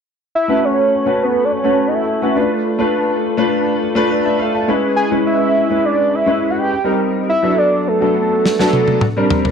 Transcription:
0.35 analog synth lead E5
0.48 grand piano A3 C#4 F#4 B4
0.65 analog synth lead C#5
1.06 grand piano A3 C#4 F#4 B4
1.23 analog synth lead B4
1.44 analog synth lead D5
1.52 analog synth lead C#5
1.64 grand piano A3 C#4 F#4 B4
1.88 analog synth lead D#5
1.94 analog synth lead E5
2.22 grand piano A3 C#4 F#4 B4
2.35 grand piano A3 D4 F4 B4
2.79 grand piano A3 D4 F4 B4
3.37 grand piano A3 D4 F4 B4
3.95 grand piano A3 D4 F4 B4
4.11 grand piano D5
4.25 grand piano E5
4.39 grand piano F5
4.54 grand piano A5
4.68 grand piano G#3 C#4 E4 B4
4.96 analog synth lead G#5
5.11 grand piano G#3 C#4 E4 B4
5.27 analog synth lead E5
5.70 grand piano G#3 C#4 E4 B4
5.85 analog synth lead D5
6.15 analog synth lead E5
6.26 grand piano G#3 C#4 E4 B4
6.50 analog synth lead F#5
6.58 analog synth lead G5
6.84 grand piano G3 C4 D#4 A#4
7.29 analog synth lead E5
7.43 grand piano F#3 B3 D4 A4
7.58 analog synth lead D5
7.88 analog synth lead A4
8.01 grand piano F#3 B3 D4 A4
8.46 snare
8.59 grand piano F#3 B3 D4 A4, snare
8.73 high tom
8.88 high tom
9.01 mid tom
9.17 grand piano G3 C4 D4 A#4
9.30 floor tom
9.45 floor tom

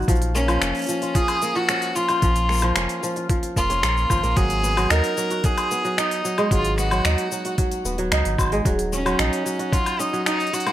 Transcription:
Already playing: kora F#3 B3 D#4 F#4
0.02 shaker
0.08 sub bass A#1, kora F3, kick, open hi-hat, shaker
0.15 shaker
0.22 open hi-hat, shaker
0.35 kora A#3, violin C#4, shaker
0.48 kora F3, open hi-hat, low woodblock, shaker
0.61 sub bass F1, kora C#4, finger snap, open hi-hat, shaker
0.75 open hi-hat, shaker
0.77 open hi-hat
0.79 open hi-hat
0.82 open hi-hat
0.84 open hi-hat
0.86 kora F3, open hi-hat, shaker
1.02 kora F4, open hi-hat, shaker
1.15 kora F3, violin G#4, kick, open hi-hat, shaker
1.28 open hi-hat, low woodblock, shaker
1.42 kora A#3, shaker
1.55 kora F3, violin F#4, shaker
1.69 kora C#4, finger snap, open hi-hat, shaker
1.82 open hi-hat, shaker
1.96 kora F3, violin F4, shaker
2.08 kora F4, open hi-hat, low woodblock, shaker
2.22 sub bass A#1, kora F3, kick, open hi-hat, shaker
2.36 open hi-hat, shaker
2.49 kora A#3, finger snap, shaker
2.52 shaker
2.54 shaker
2.56 shaker
2.58 shaker
2.61 open hi-hat, low woodblock, shaker
2.63 kora F3, shaker
2.76 sub bass F1, kora C#4, finger snap, open hi-hat, shaker
2.89 open hi-hat, shaker
3.03 kora F3, shaker
3.16 kora F4, open hi-hat, shaker
3.29 kora F3, kick, open hi-hat
3.43 open hi-hat, shaker
3.56 sub bass F1, kora A#3, violin F4, kick, shaker
3.70 kora C#4, open hi-hat, shaker
3.83 sub bass A#1, kora A#3, finger snap, open hi-hat, shaker
3.97 shaker
4.10 sub bass G#1, kora F3, kick, low woodblock, shaker
4.23 sub bass A#1, kora A#3, open hi-hat, shaker
4.37 sub bass G#1, kora F#3, violin G#4, kick, open hi-hat, shaker
4.50 open hi-hat, shaker
4.64 kora B3, shaker
4.77 kora F#3, open hi-hat, low woodblock, shaker
4.90 sub bass D#2, kora D#4, violin A#4, finger snap, open hi-hat, shaker
5.04 open hi-hat, shaker
5.17 kora F#3, shaker
5.30 kora F#4, open hi-hat, shaker
5.44 kora F#3, violin G#4, kick, open hi-hat, shaker
5.58 open hi-hat, low woodblock, shaker
5.71 kora B3, shaker
5.85 kora F#3, shaker
5.98 kora D#4, violin D#4, finger snap, open hi-hat, shaker
6.11 open hi-hat, shaker
6.25 kora F#3, shaker
6.38 kora G#3, open hi-hat, low woodblock, shaker
6.51 sub bass G#1, kora F#3, violin F4, kick, open hi-hat, shaker
6.65 open hi-hat, shaker
6.78 kora B3, violin F#4, finger snap, shaker
6.91 kora F#3, open hi-hat, low woodblock, shaker
7.05 sub bass D#2, kora D#4, finger snap, open hi-hat, shaker
7.18 open hi-hat, shaker
7.32 kora F#3, shaker
7.45 kora F#4, open hi-hat, shaker
7.58 kora F#3, kick, open hi-hat, shaker
7.72 open hi-hat, shaker
7.85 sub bass D#1, kora B3, shaker
7.98 kora F#3, open hi-hat, shaker
8.12 sub bass C#2, kora D#4, finger snap, open hi-hat, shaker
8.25 sub bass G#1, open hi-hat, shaker
8.38 sub bass G#1, kora F#3, kick, low woodblock, shaker
8.41 low woodblock
8.43 low woodblock
8.45 low woodblock
8.48 low woodblock
8.50 kora G#3, open hi-hat, low woodblock, shaker
8.65 sub bass D#1, kora F#3, kick, open hi-hat, shaker
8.79 open hi-hat, shaker
8.93 kora C#4, violin C#4, shaker
9.06 kora F#3, open hi-hat, low woodblock, shaker
9.19 sub bass A#1, kora D#4, finger snap, open hi-hat, shaker
9.33 open hi-hat, shaker
9.46 kora F#3, shaker
9.59 kora F#4, open hi-hat, shaker
9.73 kora F#3, violin F4, kick, open hi-hat, shaker
9.86 open hi-hat, low woodblock, shaker
9.99 kora C#4, violin D#4, shaker
10.13 kora F#3, shaker
10.26 violin D#4, kora D#4, finger snap, open hi-hat, shaker
10.40 open hi-hat, shaker
10.47 open hi-hat
10.53 kora F#3, violin F#4, open hi-hat, shaker
10.60 open hi-hat
10.66 kora A#3, open hi-hat, low woodblock, shaker

